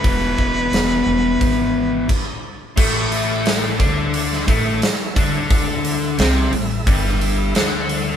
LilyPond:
<<
  \new Staff \with { instrumentName = "Harmonica" } { \time 4/4 \key e \mixolydian \tempo 4 = 88 b'2.~ b'8 r8 | \key a \mixolydian r1 | r1 | }
  \new Staff \with { instrumentName = "Tonewheel organ" } { \time 4/4 \key e \mixolydian r1 | \key a \mixolydian <e' a' cis'' e''>1 | <e' a' e''>1 | }
  \new Staff \with { instrumentName = "Distorted electric guitar" } { \clef bass \time 4/4 \key e \mixolydian <e, b, e>2. r4 | \key a \mixolydian <a, a>4. <d d'>4 <a, a>8 r8 <d d'>8~ | <d d'>4 <c c'>8 a,8 <g, g>4 <d d'>4 | }
  \new Staff \with { instrumentName = "Upright bass" } { \clef bass \time 4/4 \key e \mixolydian e,,8 e,,8 e,,8 e,,8 gis,,4 r4 | \key a \mixolydian a,,4. d,4 a,,8 r8 d,8~ | d,4 c,8 a,,8 g,,4 d,4 | }
  \new DrumStaff \with { instrumentName = "Drums" } \drummode { \time 4/4 <hho bd>8 bd8 <hho sn>4 <hho bd>4 <cymc bd>4 | <cymc bd>8 hho8 <hho sn>8 <hho bd>8 hho16 sn16 <hho bd>8 <hho sn>8 <hho bd>8 | <hho bd>8 hho8 <hho sn>8 hho8 <hho bd>16 sn16 hho8 <hho sn>8 hho8 | }
>>